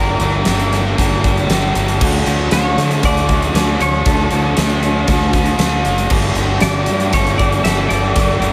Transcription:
Already playing: G1 G2 D3 G3 A#3 D4 G4 A#4
0.20 G1 G3 A#3 D4 G4, closed hi-hat
0.45 G1 G3 A#3 D4 G4, snare, closed hi-hat
0.59 closed hi-hat
0.73 snare, closed hi-hat
0.97 G1 G2 D3 G3 A#3 D4 G4, kick, closed hi-hat
1.24 G3 A#3 D4 G4, kick, closed hi-hat
1.37 closed hi-hat
1.49 G1 G3 A#3 D4 G4, snare, closed hi-hat
1.75 G1 G3 A#3 D4 G4, closed hi-hat
1.88 closed hi-hat
2.01 D2 D3 F#3 A3 D4 F#4, kick, crash
2.26 D2 A3 D4 F#4, closed hi-hat
2.51 D2 F#3 A3 D4 F#4 C#5, snare, closed hi-hat
2.77 D3, snare, closed hi-hat
2.91 closed hi-hat
3.03 D2 D3 F#3 A3 D4 F#4 D5, kick, closed hi-hat
3.17 closed hi-hat
3.29 A3 D4 F#4, kick, closed hi-hat
3.42 closed hi-hat
3.54 D2 F#3 A3 D4 F#4, snare, closed hi-hat
3.80 D2 A3 D4 F#4 C#5, closed hi-hat
4.05 D2 D3 F#3 A3 D4 F#4 A4, kick, closed hi-hat
4.31 D2 A3 D4 F#4, closed hi-hat
4.57 D2 F#3 A3 D4 F#4, snare, closed hi-hat
4.70 closed hi-hat
4.83 closed hi-hat
5.08 D2 D3 F#3 A3 D4 F#4, kick, closed hi-hat
5.33 A3 D4 F#4, kick, closed hi-hat
5.46 closed hi-hat
5.58 D2 F#3 A3 D4 F#4, snare, closed hi-hat
5.84 F#1 A3 D4 F#4, closed hi-hat
5.98 closed hi-hat
6.10 G1 G2 D3 G3 A#3 D4 G4, kick, crash
6.35 G1 G3 A#3 D4 G4, closed hi-hat
6.61 G1 G3 A#3 D4 G4 D5, snare, closed hi-hat
6.86 G2, closed hi-hat
7.00 closed hi-hat
7.12 G1 G2 D3 G3 A#3 D4 G4 C#5, kick, closed hi-hat
7.27 closed hi-hat
7.38 G3 A#3 D4 G4 D5, kick, closed hi-hat
7.52 closed hi-hat
7.63 G1 G3 A#3 D4 G4 E5, snare, closed hi-hat
7.89 G1 G3 A#3 D4 G4 D5, closed hi-hat
8.15 G1 G2 D3 G3 A#3 D4 G4, kick, closed hi-hat
8.39 G1 G3 A#3 D4 G4, closed hi-hat

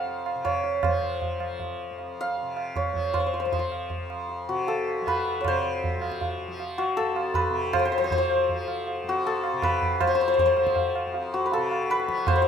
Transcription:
Already playing: F2 C3 F3 C5 F5
0.07 tabla tin
0.26 tabla na
0.35 C3
0.45 C#5, tabla na, tabla ge
0.64 tabla te
0.83 C5, tabla na, tabla ge
0.88 F3
1.22 tabla tin, tabla ge
1.39 F3, tabla na
1.60 tabla tin, tabla ge
1.90 F2
1.99 tabla tin
2.21 F5
2.37 tabla tin
2.42 C3
2.57 tabla na
2.76 C#5, tabla na, tabla ge
2.93 F3, tabla ge
3.14 C5, tabla na, tabla ge
3.20 C5
3.26 C5
3.34 C5
3.40 C5
3.45 F3 C5
3.52 C5, tabla tin, tabla ge
3.59 C5
3.72 tabla na
3.90 tabla tin, tabla ge
3.97 F2
4.10 tabla na
4.29 tabla tin
4.49 C3 F#4
4.67 A4, tabla tin
4.87 tabla na
5.01 F3
5.07 B4, tabla na, tabla ge
5.41 C#5, tabla na, tabla ge
5.46 C3 C5
5.84 tabla tin, tabla ge
5.96 F3
6.02 tabla na
6.12 tabla ke
6.21 tabla tin, tabla ge
6.48 F3
6.60 tabla tin
6.78 F#4, tabla na
6.97 F2 A4, tabla tin
7.16 tabla na
7.34 B4, tabla na, tabla ge
7.50 C3
7.73 C5, tabla na, tabla ge
7.79 C5
7.85 C5
7.92 C5
7.98 F3 C5
8.04 C5
8.11 C5, tabla tin, tabla ge
8.18 C5
8.30 tabla na
8.49 F3, tabla tin, tabla ge
8.68 tabla na
8.87 tabla tin
9.03 F2
9.09 F#4
9.25 A4, tabla tin
9.44 tabla na
9.53 C3
9.62 B4, tabla na, tabla ge
9.82 tabla ge
10.01 F3 C5, tabla na, tabla ge
10.07 C5
10.15 C5
10.21 C5
10.28 C5
10.34 C5
10.38 C5, tabla tin, tabla ge
10.46 C5
10.57 F3, tabla na
10.67 tabla ke
10.76 tabla tin, tabla ge
10.96 tabla na
11.06 F2
11.14 tabla tin
11.34 F#4
11.46 B4
11.52 A4, tabla tin
11.57 C3
11.71 tabla na
11.90 B4, tabla te
12.00 tabla te
12.08 F3, tabla ke
12.18 tabla te
12.27 C5, tabla na, tabla ge
12.35 C5
12.42 C5

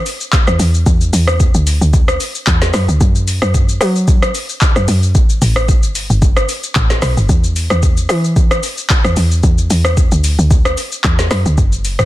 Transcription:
0.06 open hi-hat, shaker
0.21 shaker
0.33 kick, clap, shaker
0.47 E2, cross-stick, shaker
0.59 E2, open hi-hat, shaker
0.74 shaker
0.86 E2, kick, shaker
1.01 shaker
1.13 E2, open hi-hat, shaker
1.28 cross-stick, shaker
1.40 kick, shaker
1.54 D2, shaker
1.67 open hi-hat, shaker
1.81 D2, shaker
1.93 kick, shaker
2.08 cross-stick, shaker
2.20 open hi-hat, shaker
2.35 shaker
2.47 E2, kick, clap, shaker
2.62 snare, shaker
2.74 F#2, cross-stick, snare, open hi-hat, shaker
2.88 D2, shaker
3.01 F#2, kick, shaker
3.15 shaker
3.28 open hi-hat, shaker
3.42 F#2, cross-stick, shaker
3.54 kick, shaker
3.69 shaker
3.81 F#3, cross-stick, open hi-hat, shaker
3.96 shaker
4.08 kick, shaker
4.22 cross-stick, shaker
4.35 open hi-hat, shaker
4.49 shaker
4.61 kick, clap, shaker
4.76 F#2, cross-stick, shaker
4.88 F#2, open hi-hat, shaker
5.03 shaker
5.15 A1, kick, shaker
5.30 shaker
5.42 A1, open hi-hat, shaker
5.56 cross-stick, shaker
5.68 kick, shaker
5.83 G1, shaker
5.95 open hi-hat, shaker
6.10 G1, shaker
6.22 kick, shaker
6.37 cross-stick, shaker
6.49 open hi-hat, shaker
6.63 shaker
6.75 A1, kick, clap, shaker
6.90 snare, shaker
7.02 B1, cross-stick, snare, open hi-hat, shaker
7.17 G1, shaker
7.29 E2, kick, shaker
7.44 shaker
7.56 open hi-hat, shaker
7.70 E2, cross-stick, shaker
7.83 kick, shaker
7.97 shaker
8.09 E3, cross-stick, open hi-hat, shaker
8.24 shaker
8.36 kick, shaker
8.51 cross-stick, shaker
8.63 open hi-hat, shaker
8.78 shaker
8.90 kick, clap, shaker
9.04 E2, cross-stick, shaker
9.16 E2, open hi-hat, shaker
9.31 shaker
9.43 E2, kick, shaker
9.58 shaker
9.70 E2, open hi-hat, shaker
9.85 cross-stick, shaker
9.97 kick, shaker
10.12 D2, shaker
10.24 open hi-hat, shaker
10.39 D2, shaker
10.51 kick, shaker
10.65 cross-stick, shaker
10.77 open hi-hat, shaker
10.92 shaker
11.04 E2, kick, clap, shaker
11.19 snare, shaker
11.31 F#2, cross-stick, snare, open hi-hat, shaker
11.46 D2, shaker
11.58 F#1, kick, shaker
11.72 shaker
11.85 open hi-hat, shaker
11.99 F#1, cross-stick, shaker

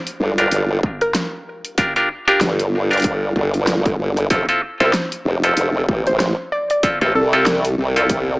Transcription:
0.07 closed hi-hat
0.20 G1
0.38 D4 F4 G4 A#4, closed hi-hat
0.51 G1, closed hi-hat
0.83 kick
1.01 A#4, cross-stick, closed hi-hat
1.15 snare, closed hi-hat
1.65 closed hi-hat
1.78 D4 F4 G4 A#4, kick, closed hi-hat
1.96 D4 F4 G4 A#4, closed hi-hat
2.28 D4 F4 G4 A#4, cross-stick, closed hi-hat
2.41 G1, snare, closed hi-hat
2.59 closed hi-hat
2.91 D4 F4 G4 A#4, closed hi-hat
2.93 closed hi-hat
2.97 closed hi-hat
3.00 closed hi-hat
3.02 closed hi-hat
3.04 kick, closed hi-hat
3.36 G1, kick
3.54 closed hi-hat
3.67 snare, closed hi-hat
3.86 kick, closed hi-hat
3.99 G1
4.17 cross-stick, closed hi-hat
4.30 F1 C4 E4 F4 A4, kick, closed hi-hat
4.49 C4 E4 F4 A4, closed hi-hat
4.80 C2 C4 E4 F4 A4 C5, closed hi-hat
4.93 snare, closed hi-hat
5.12 closed hi-hat
5.25 F1
5.44 C4 E4 F4 A4, closed hi-hat
5.57 F1, closed hi-hat
5.89 A1, kick
6.07 C5, cross-stick, closed hi-hat
6.20 C5, snare, closed hi-hat
6.52 D5
6.70 D5, closed hi-hat
6.83 C4 E4 F4 A4, kick, closed hi-hat
7.01 A1 C4 E4 F4 A4, closed hi-hat
7.15 C2 A4
7.33 C4 E4 F4 A4, cross-stick, closed hi-hat
7.46 snare, closed hi-hat
7.65 closed hi-hat
7.78 C2
7.96 C4 E4 F4 A4, closed hi-hat
8.09 kick, closed hi-hat

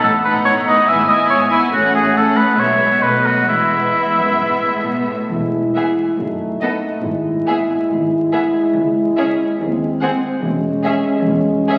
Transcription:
0.03 A1 A2 A4
0.25 B3 D#4 B4 F#5
0.45 A2 C#5
0.67 B3 D#4 D#5 F#5
0.88 G#1 G#2 B3 E4 E5 G#5
1.08 B3 E4 D#5 G#5
1.30 G#2 C#5
1.50 B3 E4 G#5
1.72 A1 A2 A3 C#4 F#4 F#5
1.95 G#4
2.15 A3 C#4 A4 F#5
2.37 B4
2.57 B1 B2 G#3 B3 C#5 E5
3.01 B1 B2 A3 B3 B4 D#5
3.26 F#4
3.47 E1 E2 G#3 B3 E4 E5
3.95 E2
4.18 F#2
4.41 G#2
4.64 A2
4.87 B2
5.10 A2
5.31 E1 E2 G#3 E4
5.75 B3 G#4 E5
6.18 F#1 F#2 A3 D#4
6.61 B3 A4 D#5
7.03 G#1 G#2 G#3 E4
7.47 B3 G#4 E5
7.90 G#1 G#2
8.32 B3 G#4 E5
8.74 C#2
9.17 C#4 G#4 E5
9.59 D#2 C4
10.01 C4 G#4 F#5
10.42 E1 E2 G#3 C#4
10.84 C#4 G#4 E5
11.26 E1 E2
11.68 C#4 G#4 E5

